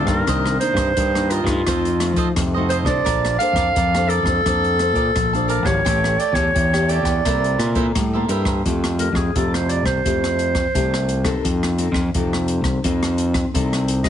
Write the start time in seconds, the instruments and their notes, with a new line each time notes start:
Already playing: nylon-string guitar A2
0.04 fingered electric bass G2, nylon-string guitar D#3 A#3 D4, clarinet A#4, cavaquinho C5 F5, kick, cross-stick
0.09 cavaquinho A4
0.27 fingered electric bass C2, nylon-string guitar C3, cavaquinho A#4 C5 D#5, kick, cross-stick, closed hi-hat
0.46 cross-stick
0.60 nylon-string guitar D#3 A#3 D4, cavaquinho A#4 C5 D#5, clarinet C5, closed hi-hat
0.74 fingered electric bass G2, cavaquinho A#4 C5 D#5, kick, cross-stick, closed hi-hat
0.97 nylon-string guitar G2, fingered electric bass G2, cavaquinho A#4 C5 D#5, kick, closed hi-hat
1.15 nylon-string guitar D#3 A#3 D4, cavaquinho C5 D#5, cross-stick, closed hi-hat
1.30 clarinet F4, cavaquinho A#4 C5 D#5, closed hi-hat
1.44 fingered electric bass G2, nylon-string guitar A3 D#4, cavaquinho D#5, kick, cross-stick, closed hi-hat
1.48 cavaquinho C5
1.67 fingered electric bass F2, nylon-string guitar F3, cavaquinho F4 A4 C5 D#5, kick, cross-stick, closed hi-hat
1.85 closed hi-hat
2.00 nylon-string guitar A3 D#4, cross-stick, closed hi-hat
2.13 fingered electric bass F3, cavaquinho F4 A4, kick, closed hi-hat
2.18 cavaquinho C5 D#5
2.36 fingered electric bass F2, nylon-string guitar C3, kick, cross-stick, closed hi-hat
2.54 nylon-string guitar A3 D#4 F#4, cavaquinho A4 C5 D#5
2.69 cavaquinho F4 A4 C5 D#5, clarinet C5, closed hi-hat
2.83 fingered electric bass C2, nylon-string guitar D4 A4, cavaquinho A4 C5 D#5, clarinet D5, kick, cross-stick
2.88 nylon-string guitar C5
3.05 fingered electric bass A#1, nylon-string guitar A#3, cavaquinho A#4 D5 F5 A5, kick, cross-stick, closed hi-hat
3.25 cross-stick, closed hi-hat
3.39 nylon-string guitar D4 A4 C5, cavaquinho A#4 D5 F5 A5, clarinet F5, closed hi-hat
3.53 fingered electric bass F2, cavaquinho A#4 D5, kick, cross-stick, closed hi-hat
3.57 cavaquinho F5 A5
3.75 fingered electric bass F2, nylon-string guitar F3, cavaquinho A#4 D5 F5 A5, kick, closed hi-hat
3.94 nylon-string guitar D4 A4 C5, cavaquinho D5 F5 A5, cross-stick, closed hi-hat
4.08 clarinet A4, cavaquinho A#4 D5 F5 A5, closed hi-hat
4.23 fingered electric bass F2, nylon-string guitar D4, cavaquinho F5 A5, kick, cross-stick
4.27 nylon-string guitar A4 C5, cavaquinho D5
4.46 fingered electric bass F2, nylon-string guitar A#3 D4 A4 C5, cavaquinho D5 F5 A5, kick, cross-stick, closed hi-hat
4.64 closed hi-hat
4.79 nylon-string guitar D4 A4 C5, cross-stick, closed hi-hat
4.93 fingered electric bass A#2, cavaquinho A#4 D5 F5 A5, kick, closed hi-hat
5.16 fingered electric bass A#1, nylon-string guitar F3, kick, cross-stick, closed hi-hat
5.33 nylon-string guitar D4 A4 C5, cavaquinho D5 F5 A5, closed hi-hat
5.48 cavaquinho A#4 D5 F5 A5, clarinet A#4, closed hi-hat
5.62 fingered electric bass G#1, nylon-string guitar E4 G4 C#5, clarinet C#5, cavaquinho F5 A5, kick, cross-stick
5.67 cavaquinho D5
5.85 fingered electric bass A1, nylon-string guitar A3, cavaquinho G4 A4 C#5 G5, kick, cross-stick, closed hi-hat
6.04 cross-stick
6.19 cavaquinho G4 A4 C#5 G5, clarinet D5, closed hi-hat
6.33 fingered electric bass E2, nylon-string guitar E4 G4 C#5, cavaquinho G4 A4 C#5 G5, clarinet C#5, kick, cross-stick, closed hi-hat
6.54 fingered electric bass E2, nylon-string guitar E3, cavaquinho G4 A4 C#5 G5, kick, closed hi-hat
6.73 nylon-string guitar E4 G4 C#5, cavaquinho A4 C#5 G5, cross-stick, closed hi-hat
6.89 cavaquinho G4 A4 C#5 G5, clarinet D5, closed hi-hat
7.03 fingered electric bass E2, cavaquinho C#5 G5, kick, cross-stick, closed hi-hat
7.07 cavaquinho A4
7.25 fingered electric bass C2, nylon-string guitar C3 A#3 E4 A4, cavaquinho E4 A#4 C5 E5, kick, cross-stick, closed hi-hat
7.44 closed hi-hat
7.59 fingered electric bass A#2, cross-stick, closed hi-hat
7.75 nylon-string guitar A#3 E4 A4, cavaquinho E4 A#4 C5 E5, kick, closed hi-hat
7.95 fingered electric bass A2, nylon-string guitar G3, kick, cross-stick, closed hi-hat
8.13 nylon-string guitar A#3 E4 A4, cavaquinho A#4 C5 E5
8.28 fingered electric bass G2, cavaquinho E4 A#4 C5 E5, closed hi-hat
8.45 cavaquinho A#4 C5 E5, kick, cross-stick
8.65 fingered electric bass F2, nylon-string guitar F3 A3 E4 G4, kick, closed hi-hat
8.84 cross-stick, closed hi-hat
8.99 nylon-string guitar A3 E4 G4, clarinet A#4, closed hi-hat
9.12 fingered electric bass F2, clarinet G#4, kick, cross-stick
9.35 fingered electric bass F2, nylon-string guitar C3 A3 E4 G4, clarinet A4, kick, closed hi-hat
9.54 clarinet C5, cross-stick, closed hi-hat
9.69 clarinet D5, closed hi-hat
9.83 fingered electric bass C2, clarinet C5, kick, cross-stick
10.04 fingered electric bass F2, nylon-string guitar F3 A3 E4 G4, kick, closed hi-hat
10.24 cross-stick, closed hi-hat
10.39 closed hi-hat
10.55 kick, cross-stick, closed hi-hat
10.74 fingered electric bass C2, nylon-string guitar C3 A3 E4 G4, kick, closed hi-hat
10.94 cross-stick, closed hi-hat
11.09 closed hi-hat
11.24 nylon-string guitar C4 D#4 A4, kick, cross-stick, closed hi-hat
11.44 fingered electric bass F2, nylon-string guitar F3, kick, closed hi-hat
11.63 cross-stick, closed hi-hat
11.78 nylon-string guitar C4 D#4 A4, closed hi-hat
11.92 fingered electric bass F2, kick, cross-stick
12.14 fingered electric bass F2, nylon-string guitar C3 C4 D#4 A4, kick, closed hi-hat
12.33 cross-stick
12.48 closed hi-hat
12.61 fingered electric bass C2, kick, cross-stick, closed hi-hat
12.84 fingered electric bass F2, nylon-string guitar F3 C4 D#4 A4, kick, closed hi-hat
13.03 cross-stick, closed hi-hat
13.18 closed hi-hat
13.34 kick, cross-stick, closed hi-hat
13.54 fingered electric bass C2, nylon-string guitar C3 C4 D#4 A4, kick, closed hi-hat
13.73 cross-stick, closed hi-hat
13.88 closed hi-hat
14.04 nylon-string guitar G3 D4 F4, clarinet D#5, kick, cross-stick, closed hi-hat